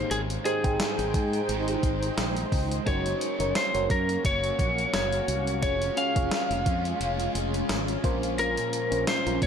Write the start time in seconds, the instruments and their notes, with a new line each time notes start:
Already playing: fm electric piano G#2 D#4 G4 G#4 C5, overdriven electric guitar G#2 D#3 G#3, ambient pad G#3 D#4 C5 G5, lead electric guitar C5
0.11 fretless electric bass G#1, lead electric guitar G#4, closed hi-hat
0.30 closed hi-hat
0.45 fm electric piano D#4 G4 G#4 C5, lead electric guitar G#4, closed hi-hat
0.64 fretless electric bass G#1, fm electric piano D#4 G#4 C5 G5, kick, closed hi-hat
0.79 overdriven electric guitar G#2 D#3 G#3, snare, closed hi-hat, tambourine
0.99 fretless electric bass G#1, closed hi-hat
1.14 fretless electric bass G#2, kick, closed hi-hat
1.33 closed hi-hat
1.48 fretless electric bass G#1, overdriven electric guitar G#2 D#3, closed hi-hat
1.52 overdriven electric guitar G#3
1.68 closed hi-hat
1.83 fretless electric bass G#1, kick, closed hi-hat
2.03 closed hi-hat
2.18 fretless electric bass A#1, snare, closed hi-hat, tambourine
2.37 closed hi-hat
2.52 fretless electric bass C#2, kick, open hi-hat
2.71 closed hi-hat
2.86 fretless electric bass F#1, overdriven electric guitar F#2 C#3, ambient pad A#3 C#4 F#4, fm electric piano C#4 F#4 A#4 C#5, lead electric guitar C#5, kick, closed hi-hat
2.90 overdriven electric guitar F#3
3.06 closed hi-hat
3.21 closed hi-hat
3.39 fretless electric bass F#1, fm electric piano C#4 F#4 A#4 C#5, closed hi-hat
3.55 lead electric guitar C5, snare, closed hi-hat, tambourine
3.74 fretless electric bass F#1, fm electric piano C#4 F#4 A#4 C#5, closed hi-hat
3.90 fretless electric bass F#2, lead electric guitar A#4, kick, closed hi-hat
4.09 closed hi-hat
4.23 fretless electric bass F#1, overdriven electric guitar F#2, lead electric guitar C#5, kick, closed hi-hat
4.28 overdriven electric guitar F#3
4.44 closed hi-hat
4.59 fretless electric bass A#1, kick, closed hi-hat
4.78 closed hi-hat
4.94 fretless electric bass F#1, lead electric guitar C#5, snare, closed hi-hat, tambourine
5.12 closed hi-hat
5.28 fretless electric bass C2, closed hi-hat
5.47 closed hi-hat
5.62 fretless electric bass F1, overdriven electric guitar C#3 G#3 C#4, ambient pad G#3 F4, fm electric piano C#4 F4 G#4 C#5, lead electric guitar C#5, kick, closed hi-hat
5.82 closed hi-hat
5.97 fm electric piano C#4 F4 G#4 C#5, lead electric guitar F5, closed hi-hat
6.15 fretless electric bass F1, fm electric piano C#4 F4 G#4 C#5, kick, closed hi-hat
6.31 overdriven electric guitar C#3 G#3 C#4, snare, closed hi-hat, tambourine
6.50 fretless electric bass F1, closed hi-hat
6.65 fretless electric bass F2, overdriven electric guitar G#3 C#4, kick, closed hi-hat
6.85 closed hi-hat
7.00 fretless electric bass F1, overdriven electric guitar C#3 G#3 C#4, closed hi-hat
7.20 closed hi-hat
7.35 fretless electric bass F1, closed hi-hat
7.54 closed hi-hat
7.69 fretless electric bass G#1, snare, closed hi-hat, tambourine
7.88 closed hi-hat
8.03 fretless electric bass A#1, fm electric piano A#2 C4 F4 A#4 C5, overdriven electric guitar A#2 F3 A#3, ambient pad A#3, kick, closed hi-hat
8.10 fm electric piano C#4
8.23 closed hi-hat
8.38 lead electric guitar A#4, closed hi-hat
8.57 closed hi-hat
8.73 closed hi-hat
8.91 fretless electric bass A#1, fm electric piano C#4 F4 A#4 C5, closed hi-hat
9.07 overdriven electric guitar A#2 F3 A#3, lead electric guitar C5, snare, closed hi-hat, tambourine
9.26 fretless electric bass A#1, fm electric piano C#4 F4 A#4, closed hi-hat
9.41 fretless electric bass A#2, overdriven electric guitar A#3, lead electric guitar C#5, kick, closed hi-hat